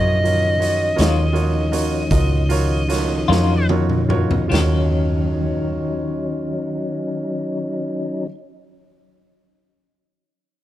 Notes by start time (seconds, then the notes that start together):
Already playing: F#2 D3 F3 F#3 E4 F4 F#4 A#4 C#5 D#5
0.24 D#3 F3 C#4 D#4 F4 F#4 A#4 C#5, closed hi-hat
0.59 F4 F#4 A#4 C#5, closed hi-hat
0.96 D#2 C#4 F4 F#4 A#4 C#5, closed hi-hat
1.00 D#3 F#3, snare
1.33 F4 F#4 A#4 C#5, closed hi-hat
1.72 F4 F#4 A#4 C#5, closed hi-hat
2.11 C#2 F4 F#4 A#4 D#5, kick, closed hi-hat
2.49 F4 F#4 A#4 C#5, closed hi-hat
2.88 F4 F#4 A#4 C#5, snare, closed hi-hat
3.28 F2 D#3 F#3 C#4 F4 F#4 A#4 C#5, snare
3.69 F4 F#4 A#4 C#5, high tom
3.90 mid tom
4.09 F4 F#4 A#4 C#5, mid tom
4.31 floor tom
4.48 D#2 D#3 F#3 C#4 D#4 F4 F#4 A#4, splash
4.52 F#3 C#5, snare
4.58 C#4